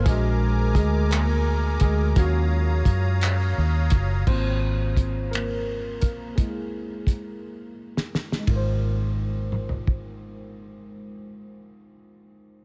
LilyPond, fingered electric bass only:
\new Staff \with { instrumentName = "Fingered electric bass" } { \clef bass \time 6/8 \key aes \mixolydian \tempo 4. = 57 bes,,4 d,4. d,8 | ees,4 ges,4 ees,8 ges,,8 | aes,,2~ aes,,8 bes,,8 | c,2~ c,8 r8 |
aes,,2.~ | aes,,2. | }